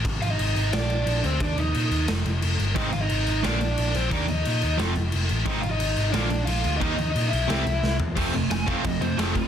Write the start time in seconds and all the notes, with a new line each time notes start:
0.05 G#1, kick, crash
0.21 G#1 F4 F5, crash
0.30 D#4 D#5
0.39 G#1, crash
0.56 G#1, crash
0.73 A#1 D4 D5, snare, crash
0.90 crash
1.06 A#1, crash
1.24 D2 C4 C5, crash
1.40 D#2 D4 D5, kick, crash
1.57 D#2 D#4 D#5, crash
1.74 A#2, crash
1.91 D#2, crash
2.08 F1, snare, crash
2.26 F1, crash
2.42 F1, crash
2.59 G1, crash
2.75 G#1 G#2 D#3 G#3 C4 D#4, kick, crash
2.92 G#1 F4 F5, crash
3.01 D#4 D#5
3.09 G#1, crash
3.27 G#1, crash
3.43 A#1 A#2 D3 F3 A#3 D4 D5, snare, crash
3.61 crash
3.78 A#1, crash
3.94 A#1 C4 C5, crash
4.11 D#2 D#3 G3 A#3 D4 D#4 D5, kick, crash
4.28 D#2 D#4 D#5, crash
4.45 A#2, crash
4.62 D#2, crash
4.78 F1 F2 C3 F3 A3 C4 F4, snare, crash
4.95 F1, crash
5.12 F1, crash
5.29 A1, crash
5.45 G#1 G#2 D#3 G#3 C4 D#4, kick, crash
5.62 G#1 F4 F5, crash
5.71 D#4 D#5
5.80 G#1, crash
5.97 G#1, crash
6.12 A#1 A#2 D3 F3 A#3 D4 D5, snare, crash
6.30 crash
6.45 A#1 F4 F5, crash
6.64 D2, crash
6.77 D#3 D#4 D#5
6.81 D#2 G3 A#3 D#4, kick, crash
6.98 D#2, crash
7.11 A#2 D#4 D#5
7.16 crash
7.30 B1 E4 E5, crash
7.48 C2 C3 G3 C4 E4, snare, crash
7.66 C2, crash
7.83 C2, snare
8.00 E2, floor tom
8.15 F1 F2 C3 F3 A3 C4, kick, crash
8.33 F1 F2 C3 F3 A3, crash
8.50 F1 F2 C3 F3 A3 G#5, snare, crash
8.66 F2 C3 F3 A3 C4 F5, kick, crash
8.84 F1 F2 C3 F3 A3 D#5, kick, crash
9.01 F2 C3 F3 A3 C5, crash
9.17 F1 F2 C3 F3 A3 C4 G#4, snare, crash
9.34 F2 C3 F3 A3 F4, kick, crash